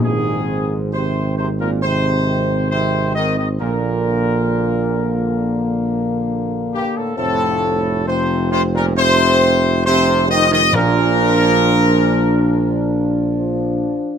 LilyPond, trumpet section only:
\new Staff \with { instrumentName = "Trumpet section" } { \time 4/4 \key bes \major \tempo 4 = 68 aes'4 c''8 c''16 bes'16 c''4 c''8 ees''16 ees''16 | bes'2. r8 g'16 a'16 | a'4 c''8 c''16 bes'16 c''4 c''8 ees''16 ees''16 | bes'2. r4 | }